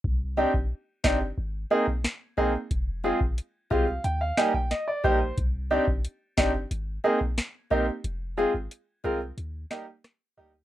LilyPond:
<<
  \new Staff \with { instrumentName = "Steel-string acoustic guitar" } { \time 4/4 \key c \minor \tempo 4 = 90 r8 <ees' g' d''>8 r8 <ees' g' d''>8 r8 <ees' bes' c''>8 r8 <ees' bes' c''>8 | r8 <f' aes' c''>8 r8 <f' aes' c''>8 r8 <g' bes' ees''>8 r8 <g' bes' ees''>8 | r8 <ees' g' d''>8 r8 <ees' g' d''>8 r8 <ees' bes' c''>8 r8 <ees' bes' c''>8 | r8 <f' aes' c''>8 r8 <f' aes' c''>8 r8 <g' bes' ees''>8 r8 <g' bes' ees''>8 | }
  \new Staff \with { instrumentName = "Grand piano" } { \time 4/4 \key c \minor << { r1 | r4. f''8 g''16 f''16 aes''16 g''16 ees''16 d''16 c''8 | r1 | r1 | } \\ { r8 <c' d' ees' g'>8 r8 <c' d' ees' g'>8 r8 <bes c' ees' aes'>8 r8 <bes c' ees' aes'>8 | r8 <aes c' f' aes'>8 r8 <aes c' f' g'>8 r8 <g bes ees' g'>8 r8 <g bes ees' g'>8 | r8 <c' d' ees' g'>8 r8 <c' d' ees' g'>8 r8 <bes c' ees' aes'>8 r8 <bes c' ees' g'>8 | r8 <aes c' f' aes'>8 r8 <aes c' f' bes'>8 r8 <g bes ees' g'>8 r8 <g bes ees' g'>8 | } >> }
  \new Staff \with { instrumentName = "808-style bass" } { \clef bass \time 4/4 \key c \minor c,8. aes,,16 r8 g,,8 aes,,8 r4. | f,,8. aes,,16 r8 c,8 ees,8 r4 bes,,8 | c,8. aes,,16 r8 g,,8 aes,,8 r4. | f,,8. aes,,16 r8 c,8 ees,8 r4 d,8 | }
  \new DrumStaff \with { instrumentName = "Drums" } \drummode { \time 4/4 bd8. bd16 r8 <bd sn>8 r8. bd16 sn8 bd8 | <hh bd>8. bd16 hh8 bd8 hh8 sn16 bd16 <hh sn>8 bd8 | <hh bd>8. bd16 hh8 <bd sn>8 hh8. bd16 <hh sn>8 bd8 | hh4 hh4 hh8 sn8 <hh ss sn>4 | }
>>